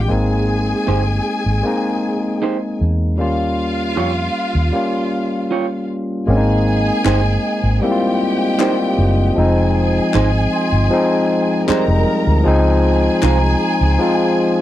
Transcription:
Already playing: tine electric piano F3 G#3 C4 F4
0.01 string section G4 G5
0.08 fingered electric bass G#1, tine electric piano G#3 A#3 C4 D#4, string section G#4 G#5
0.87 fingered electric bass G1, clean electric guitar D#4 G4 C5
1.46 fingered electric bass G#1
1.63 tine electric piano G#3 A#3 C4 D#4
2.42 clean electric guitar D#4 G4 C5
2.81 fingered electric bass E2
3.18 fingered electric bass D#2, tine electric piano G3 A#3 C#4 F4, string section F4 F5
3.96 fingered electric bass F2, clean electric guitar F4 G4 C#5
4.55 fingered electric bass D#2
4.72 tine electric piano G3 A#3 C#4 F4
5.51 clean electric guitar F4 G4 C#5
6.27 fingered electric bass G#1, tine electric piano G#3 A#3 C4 C#4, french horn section C4 D#4 C5 D#5, string section G#4 G#5
6.37 tine electric piano D#4
6.66 vibraphone D#5
7.05 fingered electric bass G1, clean electric guitar D#4 G4 C5, clap
7.63 fingered electric bass G#1
7.81 tine electric piano G3 A#3 C4 E4, string section G4 G5
7.91 tine electric piano F4
8.21 vibraphone F5
8.59 tine electric piano G3 A#3 C4 F4, clean electric guitar D#4 G4 C5, clap
8.98 fingered electric bass F#1
9.35 fingered electric bass F1, tine electric piano F3 G#3 C4 D#4, french horn section C4 F4, string section G#4 G#5
10.14 fingered electric bass G#1, clean electric guitar D#4 G#4 C5, clap
10.53 vibraphone C6
10.72 fingered electric bass G1
10.90 tine electric piano F3 G#3 C4 D#4
11.67 tine electric piano G3 G#3 C4 D#4, clean electric guitar D#4 G#4 C5, string section A#4 A#5, muted fingered electric bass stroke, clap
11.88 fingered electric bass F1
12.27 fingered electric bass D2
12.44 fingered electric bass C#2, tine electric piano F3 G#3 C4 D#4, french horn section D#4 C5 D#5, string section G#4 G#5
13.21 fingered electric bass C2, clean electric guitar D#4 F4 C5, vibraphone A#5, clap
13.81 fingered electric bass C#2
13.99 tine electric piano F3 G#3 C4 F4

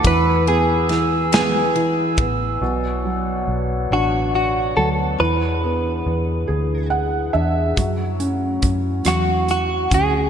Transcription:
Already playing: glass harmonica E4
0.04 fingered electric bass E2, felt piano E3, glass harmonica B4 G#5 E6, clean electric guitar B4, kick, ride
0.47 felt piano B3, clean electric guitar G#4, ride
0.89 felt piano E3, snare, ride
1.32 felt piano B3, clean electric guitar G#4, snare, ride
1.75 felt piano E3, ride
2.18 fingered electric bass A1, felt piano B3, kick, ride
2.61 fingered electric bass B1, felt piano B2, glass harmonica B3 B4 C#5 D5 F#5
3.05 felt piano F#3
3.48 fingered electric bass B1
3.91 fingered electric bass A1, felt piano D4, clean electric guitar F#4
4.35 clean electric guitar F#4
4.77 fingered electric bass D2, felt piano F#3, clean electric guitar A4
5.19 fingered electric bass E2, felt piano E3, glass harmonica D4 E4 G#4, clean electric guitar B4
5.63 felt piano B3
6.06 fingered electric bass E2
6.47 fingered electric bass D2, felt piano G#4
6.90 felt piano F#5
7.33 fingered electric bass E2, felt piano D4 E5
7.76 fingered electric bass F#2, felt piano F#3, glass harmonica A3 F#4, kick, closed hi-hat
8.20 felt piano C#4, closed hi-hat
8.62 fingered electric bass F#2, kick, closed hi-hat
9.05 fingered electric bass E2, felt piano F#3, clean electric guitar F#4, cross-stick, closed hi-hat
9.48 clean electric guitar F#4, closed hi-hat
9.90 fingered electric bass D2, felt piano C#4, clean electric guitar G#4, kick, closed hi-hat

